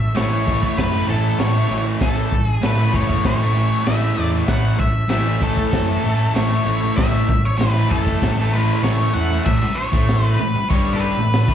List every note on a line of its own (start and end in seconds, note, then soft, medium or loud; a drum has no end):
0.00 0.13 C#4 medium
0.00 0.13 E4 medium
0.00 0.14 A4 medium
0.00 0.16 E5 medium
0.15 0.63 A1 medium
0.15 0.46 A2 medium
0.15 0.35 E3 medium
0.15 0.30 A3 medium
0.15 0.43 C#4 medium
0.15 0.43 A4 medium
0.15 0.80 C#5 medium
0.15 snare loud
0.15 crash medium
0.19 0.44 E4 medium
0.31 0.50 A3 medium
0.35 0.48 E3 medium
0.46 1.07 A2 medium
0.46 0.65 E3 medium
0.46 0.61 A3 medium
0.46 kick medium
0.50 0.75 C#4 medium
0.50 0.75 E4 medium
0.50 0.75 A4 medium
0.61 0.96 E3 medium
0.61 0.92 A3 medium
0.61 kick medium
0.77 1.01 F#2 medium
0.77 1.05 C#4 medium
0.77 1.05 E4 medium
0.77 1.06 A4 medium
0.77 1.09 B4 medium
0.77 kick medium
0.77 snare loud
0.77 crash medium
0.93 1.09 E3 medium
0.93 1.11 A3 medium
1.08 1.32 A1 medium
1.08 1.37 A2 medium
1.08 1.39 E3 medium
1.08 1.41 A3 medium
1.08 1.39 A4 medium
1.12 1.36 C#4 medium
1.12 1.36 E4 medium
1.12 1.37 A4 medium
1.38 1.62 A1 loud
1.38 1.69 A2 medium
1.38 1.57 E3 loud
1.38 1.53 A3 loud
1.38 1.83 C#5 medium
1.38 snare loud
1.38 crash medium
1.42 1.67 C#4 loud
1.42 1.67 E4 medium
1.42 1.67 A4 loud
1.53 1.71 E3 medium
1.53 1.72 A3 medium
1.69 1.94 A1 medium
1.69 2.00 A2 medium
1.69 1.88 E3 medium
1.69 1.84 A3 medium
1.73 1.98 C#4 loud
1.73 1.99 E4 medium
1.73 1.98 F#4 loud
1.84 2.04 A3 medium
1.88 2.02 E3 medium
2.01 2.24 A1 medium
2.01 2.32 A2 medium
2.01 2.33 E3 medium
2.01 2.33 A3 loud
2.01 2.28 C#4 medium
2.01 2.28 E4 medium
2.01 2.28 G#4 medium
2.01 2.47 A4 medium
2.01 kick loud
2.01 snare loud
2.01 crash medium
2.32 2.56 A1 medium
2.32 2.59 C#4 medium
2.32 2.60 E4 medium
2.32 2.60 A4 medium
2.32 muted distorted electric guitar stroke soft
2.32 kick medium
2.47 2.65 G#4 medium
2.61 2.86 A1 medium
2.61 2.92 A2 medium
2.61 2.81 E3 medium
2.61 2.78 A3 medium
2.61 2.89 C#4 medium
2.61 2.89 E4 medium
2.61 2.90 A4 medium
2.61 2.95 B4 medium
2.61 snare loud
2.61 crash medium
2.78 2.94 E3 medium
2.78 2.96 A3 medium
2.93 3.17 F#1 medium
2.93 3.54 A2 medium
2.93 3.11 E3 medium
2.93 3.07 A3 medium
2.93 3.21 C#4 medium
2.93 3.21 E4 medium
2.93 3.21 G#4 medium
2.93 3.26 C#5 medium
2.93 kick medium
3.07 3.42 E3 medium
3.07 3.38 A3 medium
3.07 kick medium
3.24 3.72 A1 loud
3.24 3.52 C#4 medium
3.24 3.52 E4 medium
3.24 3.52 F#4 medium
3.24 3.89 C#5 medium
3.24 kick loud
3.24 snare loud
3.24 crash medium
3.39 3.57 A3 medium
3.43 3.56 E3 medium
3.54 3.84 A2 medium
3.54 3.86 E3 medium
3.54 3.88 A3 medium
3.54 3.83 C#4 medium
3.54 3.83 E4 medium
3.58 3.83 F#4 medium
3.84 4.10 A1 loud
3.84 4.14 A2 medium
3.84 4.03 E3 medium
3.84 3.99 A3 loud
3.84 4.30 E5 loud
3.84 snare loud
3.84 crash medium
3.88 4.14 C#4 medium
3.88 4.14 E4 medium
3.88 4.14 G#4 loud
3.99 4.16 E3 medium
3.99 4.17 A3 medium
4.14 4.41 E2 medium
4.14 4.45 A2 medium
4.14 4.33 E3 medium
4.14 4.30 A3 medium
4.19 4.45 C#4 loud
4.19 4.45 E4 medium
4.19 4.45 G#4 loud
4.30 4.47 E3 medium
4.30 4.49 A3 medium
4.46 4.72 A1 loud
4.46 4.78 A2 loud
4.46 4.79 E3 loud
4.46 4.79 A3 loud
4.46 4.75 C#4 medium
4.46 4.77 F#5 loud
4.46 kick loud
4.46 snare loud
4.46 crash medium
4.50 4.76 E4 medium
4.50 4.76 A4 loud
4.78 5.03 A1 medium
4.78 5.06 C#4 medium
4.78 5.06 E4 medium
4.78 5.06 A4 medium
4.78 5.09 E5 loud
4.78 muted distorted electric guitar stroke soft
4.78 kick medium
5.08 5.57 A1 loud
5.08 5.40 A2 medium
5.08 5.28 E3 loud
5.08 5.24 A3 loud
5.08 5.37 C#4 medium
5.08 5.37 E4 medium
5.08 5.37 F#4 medium
5.08 5.42 E5 loud
5.08 snare loud
5.08 crash medium
5.24 5.42 E3 medium
5.24 5.44 A3 medium
5.40 6.03 A2 medium
5.40 5.61 E3 medium
5.40 5.67 C#4 medium
5.40 5.67 E4 medium
5.40 5.67 A4 medium
5.40 6.38 A4 medium
5.40 kick medium
5.44 5.57 A3 medium
5.57 5.91 E3 medium
5.57 5.87 A3 medium
5.57 kick medium
5.71 5.96 F#2 loud
5.71 5.98 C#4 medium
5.71 5.98 E4 medium
5.71 5.99 A4 medium
5.71 kick loud
5.71 snare loud
5.71 crash medium
5.88 6.05 E3 medium
5.88 6.06 A3 medium
6.03 6.27 A1 medium
6.03 6.34 A2 medium
6.03 6.36 E3 medium
6.03 6.31 C#4 medium
6.03 6.32 E4 medium
6.03 6.32 A4 medium
6.07 6.38 A3 medium
6.34 6.58 A1 loud
6.34 6.64 A2 medium
6.34 6.54 E3 medium
6.34 6.61 C#4 medium
6.34 6.61 E4 medium
6.34 6.62 A4 loud
6.34 6.93 C#5 medium
6.34 snare loud
6.34 crash medium
6.38 6.50 A3 loud
6.50 6.67 E3 medium
6.50 6.68 A3 medium
6.65 6.89 A1 medium
6.65 6.95 A2 medium
6.65 6.83 E3 medium
6.65 6.80 A3 medium
6.65 6.92 C#4 loud
6.65 6.93 E4 medium
6.65 6.93 A4 loud
6.81 6.98 E3 medium
6.81 6.99 A3 medium
6.96 7.21 A1 medium
6.96 7.28 A2 medium
6.96 7.28 E3 medium
6.96 7.25 C#4 medium
6.96 7.25 E4 medium
6.96 7.45 E5 medium
6.96 kick loud
6.96 snare loud
6.96 crash medium
7.00 7.29 A3 loud
7.00 7.25 B4 loud
7.29 7.52 A1 medium
7.29 7.55 C#4 medium
7.29 7.55 E4 medium
7.29 7.55 A4 medium
7.29 muted distorted electric guitar stroke soft
7.29 kick medium
7.45 7.58 C#5 medium
7.58 7.83 A1 medium
7.58 7.88 A2 medium
7.58 7.77 E3 medium
7.58 7.85 C#4 medium
7.58 7.86 E4 medium
7.58 7.91 B4 medium
7.58 7.86 B4 medium
7.58 snare loud
7.58 crash medium
7.62 7.73 A3 loud
7.74 7.90 E3 medium
7.74 7.92 A3 medium
7.89 8.15 F#1 medium
7.89 8.36 A2 medium
7.89 8.08 E3 medium
7.89 8.05 A3 medium
7.89 8.17 C#4 medium
7.89 8.18 E4 medium
7.89 8.79 A4 medium
7.89 8.18 A4 medium
7.89 kick medium
8.06 8.40 E3 medium
8.06 8.36 A3 medium
8.06 kick medium
8.21 8.69 A1 loud
8.21 8.48 C#4 medium
8.21 8.48 E4 medium
8.21 8.49 A4 medium
8.21 kick loud
8.21 snare loud
8.21 crash medium
8.37 8.54 E3 medium
8.37 8.55 A3 medium
8.51 8.82 A2 medium
8.51 8.79 C#4 medium
8.51 8.79 E4 medium
8.51 8.79 G#4 medium
8.51 8.83 B4 medium
8.55 8.84 E3 medium
8.55 8.86 A3 medium
8.82 9.07 A1 medium
8.82 9.12 A2 medium
8.82 9.01 E3 medium
8.82 9.09 C#4 loud
8.82 9.10 E4 loud
8.82 9.10 A4 loud
8.82 9.12 C#5 loud
8.82 snare loud
8.82 crash soft
8.87 8.97 A3 loud
8.98 9.14 E3 medium
8.98 9.16 A3 medium
9.13 9.39 E2 medium
9.13 9.43 A2 medium
9.13 9.33 E3 medium
9.13 9.29 A3 medium
9.13 9.41 C#4 loud
9.13 9.41 E4 loud
9.13 9.41 A4 loud
9.13 9.44 F#5 loud
9.30 9.46 E3 medium
9.30 9.44 A3 medium
9.45 9.60 A1 medium
9.45 9.61 A2 medium
9.45 9.72 C#4 medium
9.45 9.73 E4 medium
9.45 9.72 A4 loud
9.45 9.77 E5 loud
9.45 kick medium
9.45 crash loud
9.61 muted picked electric bass stroke soft
9.61 muted distorted electric guitar stroke medium
9.76 10.04 C#4 medium
9.76 10.04 E4 medium
9.76 10.04 F#4 medium
9.76 10.36 C#5 loud
9.92 10.36 A1 medium
9.92 10.38 A2 medium
9.92 10.39 A3 medium
9.92 kick loud
10.06 10.33 C#4 medium
10.06 10.34 E4 medium
10.06 10.35 F#4 medium
10.06 snare loud
10.06 open hi-hat medium
10.37 10.54 A1 medium
10.37 10.54 A2 medium
10.37 10.65 C#4 medium
10.37 10.65 E4 medium
10.37 10.66 F#4 medium
10.37 10.69 B4 medium
10.55 muted distorted electric guitar stroke medium
10.55 muted picked electric bass stroke soft
10.69 11.14 G1 loud
10.69 11.16 G2 medium
10.69 11.16 G3 loud
10.69 10.96 C#4 medium
10.69 10.96 E4 medium
10.69 10.96 A4 medium
10.69 10.95 C#5 loud
10.69 kick loud
10.69 open hi-hat medium
10.93 11.01 A4 medium
10.99 11.27 C#4 loud
10.99 11.27 E4 medium
10.99 11.27 A4 loud
10.99 11.54 B4 medium
11.17 11.46 A1 medium
11.17 11.42 A2 medium
11.32 11.54 C#4 loud
11.32 11.54 E4 medium
11.32 11.54 A4 loud
11.32 snare loud
11.32 open hi-hat medium
11.47 11.54 A1 medium
11.47 11.54 A2 medium
11.47 11.54 A3 medium
11.47 kick loud